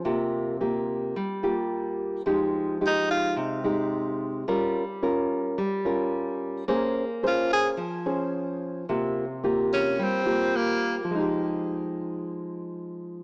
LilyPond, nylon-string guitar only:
\new Staff \with { instrumentName = "Nylon-string guitar" } { \time 4/4 \key f \minor \tempo 4 = 109 << { <bes f' g'>4 <bes f' g'>4 r8 <bes f' g'>4. | <aes ees' g'>4 <aes ees' g'>4. <aes ees' g'>4. | <des' f' bes'>8 r8 <des' f' bes'>4 r8 <des' f' bes'>4. | <des' aes' c''>8 r8 <des' aes' c''>4 r8 <des' aes' c''>4. |
<bes f' g'>8 r8 <bes f' g'>4. <bes f' g'>4. | <f aes ees' g'>1 | } \\ { c2 g2 | f2 c2 | g2 g2 | bes2 f2 |
c2 g2 | r1 | } >> }